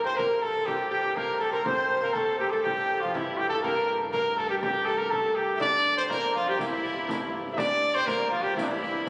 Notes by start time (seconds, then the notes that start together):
Already playing: G2
0.04 C4 C5
0.17 A#3 A#4, frame drum
0.42 A3 A4
0.66 G3 G4, frame drum
0.73 F4
0.78 G4
0.90 G3 G4
1.16 A#3 A#4, frame drum
1.40 A3 A4
1.51 A#3 A#4 C5
1.64 G2 C4 C5, frame drum
2.01 A#3 A#4
2.13 A3 A4, frame drum
2.39 G3 G4
2.50 A3 A4
2.63 G3 G4, frame drum
3.01 F3 F4
3.13 E3 E4, frame drum
3.38 G4
3.49 A3 A4
3.62 A#3 A#4, frame drum
4.11 A#3 A#4, frame drum
4.37 A3 A4
4.49 G3 G4
4.61 G3 G4, frame drum
4.85 A3 A4
4.98 A#4
5.10 A3 A4, frame drum
5.35 G4
5.55 E5
5.60 G2 D4 D5, riq, frame drum
5.87 riq
5.97 C4 C5
6.09 A#3 A#4, riq, frame drum
6.35 F3 F4
6.48 G4
6.59 E3 E4, riq, frame drum
6.86 riq
7.09 riq, frame drum
7.52 E5
7.58 D4 D5, riq, frame drum
7.84 riq
7.95 C4 C5
8.07 A#3 A#4, riq, frame drum
8.30 F3 F4
8.42 G3 G4
8.56 E3 E4, riq, frame drum
8.63 D4
8.69 E3 E4
8.82 riq, frame drum